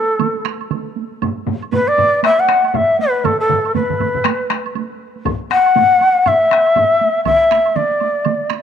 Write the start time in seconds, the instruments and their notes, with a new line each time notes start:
Already playing: shakuhachi A4
0.19 taiko mid, taiko high, high woodblock
0.35 taiko high
0.45 taiko rim, taiko high, high woodblock
0.61 taiko high, high woodblock
0.71 taiko mid, taiko high, high woodblock
0.86 taiko high
0.96 taiko high
1.12 taiko high
1.22 taiko low-mid, taiko high, high woodblock
1.37 taiko high
1.47 taiko low-mid, taiko high
1.62 taiko high, high woodblock
1.72 shakuhachi B4, taiko low-mid, taiko high, high woodblock
1.87 shakuhachi D5, taiko high
1.98 taiko low-mid, taiko high, high woodblock
2.23 shakuhachi E5, taiko rim, taiko high, high woodblock
2.39 shakuhachi F#5, taiko high
2.48 taiko rim, taiko high, high woodblock
2.64 taiko high, high woodblock
2.68 shakuhachi F#5
2.74 shakuhachi E5, taiko low-mid, taiko high, high woodblock
2.89 taiko high
2.99 shakuhachi B4, taiko high
3.14 taiko high
3.24 shakuhachi A4, taiko low-mid, taiko mid, taiko high, high woodblock
3.40 shakuhachi A4, taiko high
3.49 taiko low-mid, taiko mid, taiko high
3.65 taiko high, high woodblock
3.75 shakuhachi B4, taiko low-mid, taiko mid, taiko high, high woodblock
3.90 taiko low-mid, taiko mid
4.00 taiko low-mid, taiko mid, taiko high, high woodblock
4.15 taiko low-mid, taiko mid
4.25 taiko rim, taiko high, high woodblock
4.40 taiko high
4.50 taiko rim, taiko high, high woodblock
4.66 taiko high, high woodblock
4.75 taiko high, high woodblock
4.90 taiko high
5.16 taiko high
5.25 taiko, taiko low-mid, taiko high, high woodblock
5.41 taiko high
5.50 shakuhachi F#5, taiko rim, taiko high
5.66 high woodblock
5.76 taiko low-mid, taiko high, high woodblock
5.91 taiko high
6.01 taiko high, high woodblock
6.26 shakuhachi E5, taiko low-mid, taiko high, high woodblock
6.41 taiko high
6.51 taiko rim, taiko high, high woodblock
6.66 taiko high, high woodblock
6.76 taiko low-mid, taiko high, high woodblock
6.91 taiko high
7.01 taiko high
7.16 taiko high
7.25 shakuhachi E5, taiko, taiko mid, taiko high, high woodblock
7.41 taiko high
7.51 taiko rim, taiko high
7.65 taiko high, high woodblock
7.75 shakuhachi D5, taiko mid, taiko high, high woodblock
7.91 taiko high
8.00 taiko high, high woodblock
8.25 taiko mid, taiko high, high woodblock
8.41 taiko high
8.50 taiko rim, taiko high, high woodblock